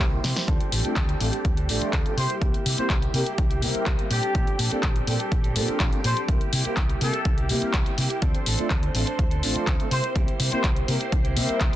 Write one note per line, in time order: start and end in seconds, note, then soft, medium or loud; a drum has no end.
0.00 0.16 C2 medium
0.00 0.22 G3 medium
0.00 0.23 A#3 medium
0.00 0.49 C5 medium
0.00 0.49 C6 medium
0.12 0.18 A#3 medium
0.12 0.19 C4 medium
0.12 0.19 E4 medium
0.12 0.19 G4 medium
0.12 0.19 A#4 medium
0.23 0.32 C3 medium
0.23 0.47 G3 medium
0.23 0.48 A#3 medium
0.23 0.48 E4 medium
0.23 0.49 G4 medium
0.23 snare medium
0.23 open hi-hat medium
0.36 snare medium
0.47 0.56 D2 medium
0.47 0.70 F3 medium
0.47 0.59 A3 medium
0.47 0.59 C4 medium
0.47 0.71 C4 medium
0.47 0.59 D4 medium
0.47 0.72 D4 medium
0.47 0.59 F4 medium
0.47 8.23 G4 medium
0.47 0.59 A4 medium
0.47 0.73 A4 loud
0.47 8.23 G5 medium
0.47 kick loud
0.47 closed hi-hat medium
0.60 closed hi-hat soft
0.71 0.80 A1 medium
0.71 0.84 F3 medium
0.71 0.85 C4 medium
0.71 0.84 D4 medium
0.71 0.83 A4 medium
0.71 open hi-hat loud
0.84 0.95 A3 medium
0.84 0.95 C4 medium
0.84 0.95 C4 soft
0.84 0.95 D4 medium
0.84 0.96 D4 medium
0.84 0.95 F4 medium
0.84 0.96 A4 medium
0.84 0.95 A4 medium
0.84 closed hi-hat soft
0.96 1.12 D2 medium
0.96 1.18 F3 medium
0.96 kick loud
0.96 clap loud
0.96 closed hi-hat medium
1.09 closed hi-hat soft
1.20 1.29 A1 medium
1.20 1.33 F3 medium
1.20 1.27 A3 medium
1.20 1.27 C4 medium
1.20 1.33 C4 medium
1.20 1.28 D4 medium
1.20 1.33 D4 medium
1.20 1.28 F4 medium
1.20 1.28 A4 medium
1.20 1.31 A4 medium
1.20 open hi-hat medium
1.32 1.58 C4 soft
1.32 1.57 D4 medium
1.32 1.55 A4 medium
1.32 closed hi-hat soft
1.45 1.69 D2 medium
1.45 kick loud
1.45 closed hi-hat medium
1.56 1.68 C4 soft
1.56 1.69 D4 medium
1.56 1.69 A4 medium
1.56 closed hi-hat soft
1.68 1.77 A1 medium
1.68 1.91 F3 medium
1.68 2.02 A3 medium
1.68 2.02 C4 medium
1.68 1.92 C4 medium
1.68 2.03 D4 medium
1.68 1.92 D4 medium
1.68 2.03 F4 medium
1.68 2.03 A4 medium
1.68 1.93 A4 medium
1.68 open hi-hat loud
1.82 muted fingered electric bass stroke soft
1.82 closed hi-hat soft
1.92 2.01 D2 medium
1.92 2.16 F3 medium
1.92 2.17 C4 medium
1.92 2.18 D4 medium
1.92 2.18 A4 medium
1.92 kick loud
1.92 clap loud
1.92 closed hi-hat medium
2.05 2.12 A3 medium
2.05 2.12 C4 medium
2.05 2.12 D4 medium
2.05 2.12 F4 medium
2.05 2.13 A4 medium
2.05 closed hi-hat soft
2.17 2.25 C3 medium
2.17 2.40 G3 medium
2.17 2.40 A#3 medium
2.17 2.41 E4 medium
2.17 2.41 G4 medium
2.17 2.35 C5 medium
2.17 open hi-hat medium
2.30 closed hi-hat soft
2.41 2.50 C2 medium
2.41 2.64 G3 medium
2.41 2.53 A#3 medium
2.41 2.65 A#3 medium
2.41 2.53 C4 medium
2.41 2.53 E4 medium
2.41 2.66 E4 medium
2.41 2.53 G4 medium
2.41 2.66 G4 medium
2.41 2.53 A#4 medium
2.41 kick loud
2.41 closed hi-hat medium
2.54 closed hi-hat soft
2.65 2.74 C3 medium
2.65 2.78 G3 medium
2.65 2.78 A#3 medium
2.65 2.78 E4 medium
2.65 2.76 G4 medium
2.65 open hi-hat loud
2.77 2.88 A#3 medium
2.77 2.89 A#3 soft
2.77 2.89 C4 medium
2.77 2.89 E4 medium
2.77 2.89 G4 medium
2.77 2.89 A#4 medium
2.77 2.96 C5 medium
2.77 muted fingered electric bass stroke soft
2.77 closed hi-hat soft
2.89 3.06 C2 medium
2.89 3.12 G3 medium
2.89 3.15 G4 loud
2.89 kick loud
2.89 clap loud
2.89 closed hi-hat medium
3.02 closed hi-hat soft
3.13 3.22 C3 medium
3.13 3.26 G3 medium
3.13 3.21 A#3 medium
3.13 3.27 A#3 medium
3.13 3.21 C4 medium
3.13 3.21 E4 medium
3.13 3.26 E4 medium
3.13 3.21 G4 medium
3.13 3.24 G4 medium
3.13 3.21 A#4 medium
3.13 open hi-hat medium
3.26 3.51 A#3 soft
3.26 3.50 E4 medium
3.26 3.49 G4 medium
3.26 closed hi-hat soft
3.38 3.64 C2 medium
3.38 kick loud
3.38 closed hi-hat medium
3.50 3.61 A#3 soft
3.50 3.62 E4 medium
3.50 3.62 G4 medium
3.50 closed hi-hat soft
3.62 3.70 C3 medium
3.62 3.85 G3 medium
3.62 3.96 A#3 medium
3.62 3.85 A#3 medium
3.62 3.96 C4 medium
3.62 3.96 E4 medium
3.62 3.86 E4 medium
3.62 3.96 G4 medium
3.62 3.86 G4 medium
3.62 3.96 A#4 medium
3.62 open hi-hat loud
3.75 muted fingered electric bass stroke soft
3.75 closed hi-hat soft
3.86 3.95 C2 medium
3.86 4.09 G3 medium
3.86 kick loud
3.86 clap loud
3.86 closed hi-hat medium
3.98 4.05 A#3 medium
3.98 4.05 C4 medium
3.98 4.06 E4 medium
3.98 4.06 G4 medium
3.98 4.06 A#4 medium
3.98 closed hi-hat soft
4.10 4.19 A#2 medium
4.10 4.23 F3 medium
4.10 4.23 C4 medium
4.10 4.23 D4 medium
4.10 4.59 G4 loud
4.10 4.21 A4 medium
4.10 open hi-hat medium
4.22 4.34 C4 soft
4.22 4.34 D4 soft
4.22 4.35 A4 medium
4.22 closed hi-hat soft
4.34 4.43 A#1 medium
4.34 4.57 F3 medium
4.34 4.46 A#3 medium
4.34 4.46 C4 medium
4.34 4.58 C4 medium
4.34 4.46 D4 medium
4.34 4.46 F4 medium
4.34 4.46 A4 medium
4.34 4.60 A4 medium
4.34 kick loud
4.34 closed hi-hat medium
4.47 closed hi-hat soft
4.58 4.67 A#2 medium
4.58 4.71 F3 medium
4.58 4.72 C4 medium
4.58 4.71 D4 medium
4.58 4.69 A4 medium
4.58 open hi-hat loud
4.71 4.82 A#3 medium
4.71 4.82 C4 medium
4.71 4.82 D4 medium
4.71 4.83 D4 medium
4.71 4.82 F4 medium
4.71 4.83 A4 medium
4.71 4.82 A4 medium
4.71 muted fingered electric bass stroke soft
4.71 closed hi-hat soft
4.83 4.99 A#1 medium
4.83 5.05 F3 medium
4.83 5.06 C4 medium
4.83 5.07 D4 medium
4.83 5.08 A4 loud
4.83 kick loud
4.83 clap loud
4.83 closed hi-hat medium
4.96 closed hi-hat soft
5.07 5.16 A#2 medium
5.07 5.20 F3 medium
5.07 5.14 A#3 medium
5.07 5.14 C4 medium
5.07 5.20 C4 medium
5.07 5.15 D4 medium
5.07 5.19 D4 medium
5.07 5.15 F4 medium
5.07 5.15 A4 medium
5.07 5.18 A4 medium
5.07 open hi-hat medium
5.19 5.45 C4 medium
5.19 5.43 D4 medium
5.19 5.42 A4 medium
5.19 closed hi-hat soft
5.32 5.57 A#1 medium
5.32 kick loud
5.32 closed hi-hat medium
5.43 5.55 C4 medium
5.43 5.56 D4 medium
5.43 5.55 A4 medium
5.43 closed hi-hat soft
5.55 5.64 A#2 medium
5.55 5.78 F3 medium
5.55 5.89 A#3 medium
5.55 5.89 C4 medium
5.55 5.79 C4 medium
5.55 5.90 D4 medium
5.55 5.80 D4 medium
5.55 5.90 F4 medium
5.55 5.90 A4 medium
5.55 5.80 A4 medium
5.55 open hi-hat loud
5.68 muted fingered electric bass stroke soft
5.68 closed hi-hat soft
5.80 5.88 A#1 medium
5.80 kick loud
5.80 clap loud
5.80 closed hi-hat medium
5.92 5.99 A#3 medium
5.92 5.99 C4 medium
5.92 5.99 D4 medium
5.92 5.99 F4 medium
5.92 5.99 A4 medium
5.92 closed hi-hat soft
6.04 6.12 A#2 medium
6.04 6.16 F3 medium
6.04 6.17 C4 medium
6.04 6.16 D4 medium
6.04 6.15 A4 medium
6.04 6.22 C5 medium
6.04 open hi-hat loud
6.16 6.28 C4 soft
6.16 6.29 D4 medium
6.16 6.28 A4 medium
6.16 closed hi-hat soft
6.28 6.37 C2 medium
6.28 6.51 G3 medium
6.28 6.40 A#3 medium
6.28 6.52 A#3 medium
6.28 6.40 C4 medium
6.28 6.40 E4 medium
6.28 6.53 E4 loud
6.28 6.40 G4 medium
6.28 6.53 G4 medium
6.28 6.40 A#4 medium
6.28 kick loud
6.28 closed hi-hat medium
6.41 closed hi-hat soft
6.52 6.61 C3 medium
6.52 6.65 G3 medium
6.52 6.65 A#3 medium
6.52 6.65 E4 medium
6.52 6.63 G4 medium
6.52 open hi-hat loud
6.64 6.76 A#3 medium
6.64 6.76 A#3 soft
6.64 6.76 C4 medium
6.64 6.76 E4 medium
6.64 6.77 E4 medium
6.64 6.77 G4 medium
6.64 6.76 G4 medium
6.64 6.76 A#4 medium
6.64 muted fingered electric bass stroke soft
6.64 closed hi-hat soft
6.76 6.93 C2 medium
6.76 6.99 G3 medium
6.76 7.01 E4 medium
6.76 kick loud
6.76 clap loud
6.76 closed hi-hat medium
6.89 closed hi-hat soft
7.01 7.09 C3 medium
7.01 7.13 G3 medium
7.01 7.08 A#3 medium
7.01 7.14 A#3 medium
7.01 7.08 C4 medium
7.01 7.08 E4 medium
7.01 7.13 E4 medium
7.01 7.08 G4 medium
7.01 7.12 G4 medium
7.01 7.38 A4 medium
7.01 7.08 A#4 medium
7.01 open hi-hat medium
7.13 7.38 A#3 medium
7.13 7.37 E4 medium
7.13 7.36 G4 medium
7.13 closed hi-hat soft
7.25 7.51 C2 medium
7.25 kick loud
7.25 closed hi-hat medium
7.37 7.49 A#3 medium
7.37 7.49 E4 medium
7.37 7.49 G4 medium
7.37 closed hi-hat soft
7.49 7.58 C3 medium
7.49 7.72 G3 medium
7.49 7.83 A#3 medium
7.49 7.73 A#3 medium
7.49 7.83 C4 medium
7.49 7.83 E4 medium
7.49 7.73 E4 medium
7.49 7.83 G4 medium
7.49 7.74 G4 medium
7.49 7.83 A#4 medium
7.49 open hi-hat loud
7.62 muted fingered electric bass stroke soft
7.62 closed hi-hat soft
7.73 7.82 C2 medium
7.73 7.96 G3 medium
7.73 kick loud
7.73 clap loud
7.73 closed hi-hat medium
7.86 7.93 A#3 medium
7.86 7.93 C4 medium
7.86 7.93 E4 medium
7.86 7.93 G4 medium
7.86 7.93 A#4 medium
7.86 closed hi-hat soft
7.97 8.06 C3 medium
7.97 8.10 G3 medium
7.97 8.10 A#3 medium
7.97 8.10 E4 medium
7.97 8.08 G4 medium
7.97 open hi-hat medium
8.10 8.22 A#3 soft
8.10 8.22 E4 soft
8.10 8.22 G4 medium
8.10 closed hi-hat soft
8.22 8.30 D2 medium
8.22 8.44 F3 medium
8.22 8.33 A3 medium
8.22 8.33 C4 medium
8.22 8.45 C4 medium
8.22 8.33 D4 medium
8.22 8.46 D4 medium
8.22 8.33 F4 medium
8.22 8.34 A4 medium
8.22 8.47 A4 medium
8.22 11.76 C5 medium
8.22 11.76 C6 medium
8.22 kick loud
8.22 closed hi-hat medium
8.35 closed hi-hat soft
8.45 8.55 A1 medium
8.45 8.58 F3 medium
8.45 8.59 C4 medium
8.45 8.58 D4 medium
8.45 8.57 A4 medium
8.45 open hi-hat loud
8.58 8.69 A3 medium
8.58 8.69 C4 medium
8.58 8.69 C4 soft
8.58 8.69 D4 medium
8.58 8.70 D4 medium
8.58 8.69 F4 medium
8.58 8.70 A4 medium
8.58 closed hi-hat soft
8.70 8.87 D2 medium
8.70 8.93 F3 medium
8.70 8.94 C4 medium
8.70 8.94 D4 medium
8.70 8.95 A4 loud
8.70 kick loud
8.70 clap loud
8.70 closed hi-hat medium
8.83 closed hi-hat soft
8.94 9.03 A1 medium
8.94 9.07 F3 medium
8.94 9.02 A3 medium
8.94 9.02 C4 medium
8.94 9.07 C4 medium
8.94 9.02 D4 medium
8.94 9.06 D4 medium
8.94 9.02 F4 medium
8.94 9.02 A4 medium
8.94 9.05 A4 medium
8.94 open hi-hat medium
9.06 9.32 C4 medium
9.06 9.31 D4 medium
9.06 9.29 A4 medium
9.06 closed hi-hat soft
9.19 9.43 D2 medium
9.19 kick loud
9.19 closed hi-hat medium
9.30 9.42 C4 medium
9.30 9.43 D4 medium
9.30 9.43 A4 medium
9.30 closed hi-hat soft
9.42 9.51 A1 medium
9.42 9.65 F3 medium
9.42 9.77 A3 medium
9.42 9.77 C4 medium
9.42 9.66 C4 medium
9.42 9.77 D4 medium
9.42 9.67 D4 medium
9.42 9.77 F4 medium
9.42 9.77 A4 medium
9.42 9.67 A4 medium
9.42 open hi-hat loud
9.55 muted fingered electric bass stroke soft
9.55 closed hi-hat soft
9.67 9.75 D2 medium
9.67 9.90 F3 medium
9.67 9.92 A4 loud
9.67 kick loud
9.67 clap loud
9.67 closed hi-hat medium
9.79 9.86 A3 medium
9.79 9.86 C4 medium
9.79 9.86 D4 medium
9.79 9.86 F4 medium
9.79 9.87 A4 medium
9.79 closed hi-hat soft
9.91 10.00 C3 medium
9.91 10.03 G3 medium
9.91 10.04 A#3 medium
9.91 10.03 E4 medium
9.91 10.02 G4 medium
9.91 10.09 C5 medium
9.91 open hi-hat medium
10.03 10.14 A#3 soft
10.03 10.15 E4 soft
10.03 10.15 G4 medium
10.03 closed hi-hat soft
10.15 10.24 C2 loud
10.15 10.38 G3 medium
10.15 10.27 A#3 medium
10.15 10.39 A#3 medium
10.15 10.27 C4 medium
10.15 10.27 E4 medium
10.15 10.40 E4 loud
10.15 10.27 G4 medium
10.15 10.40 G4 loud
10.15 10.27 A#4 medium
10.15 kick loud
10.15 closed hi-hat medium
10.28 closed hi-hat soft
10.39 10.48 C3 medium
10.39 10.52 G3 medium
10.39 10.52 A#3 medium
10.39 10.52 E4 medium
10.39 10.50 G4 medium
10.39 open hi-hat loud
10.51 10.63 A#3 medium
10.51 10.63 A#3 soft
10.51 10.63 C4 medium
10.51 10.63 E4 medium
10.51 10.64 E4 medium
10.51 10.64 G4 medium
10.51 10.63 G4 medium
10.51 10.63 A#4 medium
10.51 10.70 C5 medium
10.51 muted fingered electric bass stroke soft
10.51 closed hi-hat soft
10.63 10.80 C2 medium
10.63 10.86 G3 medium
10.63 10.87 A#3 medium
10.63 kick loud
10.63 clap loud
10.63 closed hi-hat medium
10.76 closed hi-hat soft
10.87 10.96 C3 medium
10.87 11.00 G3 medium
10.87 10.95 A#3 medium
10.87 11.01 A#3 medium
10.87 10.95 C4 medium
10.87 10.95 E4 medium
10.87 11.00 E4 medium
10.87 10.95 G4 medium
10.87 10.99 G4 medium
10.87 10.95 A#4 medium
10.87 open hi-hat medium
11.00 11.25 A#3 medium
11.00 11.24 E4 medium
11.00 11.23 G4 medium
11.00 closed hi-hat soft
11.12 11.38 C2 medium
11.12 kick loud
11.12 closed hi-hat medium
11.24 11.35 A#3 medium
11.24 11.36 E4 medium
11.24 11.36 G4 medium
11.24 closed hi-hat soft
11.36 11.45 C3 medium
11.36 11.59 G3 medium
11.36 11.70 A#3 medium
11.36 11.60 A#3 medium
11.36 11.70 C4 medium
11.36 11.70 E4 medium
11.36 11.60 E4 medium
11.36 11.70 G4 medium
11.36 11.61 G4 medium
11.36 11.70 A#4 medium
11.36 open hi-hat loud
11.49 muted fingered electric bass stroke soft
11.49 closed hi-hat soft
11.60 11.69 C2 medium
11.60 kick loud
11.60 clap loud
11.60 closed hi-hat medium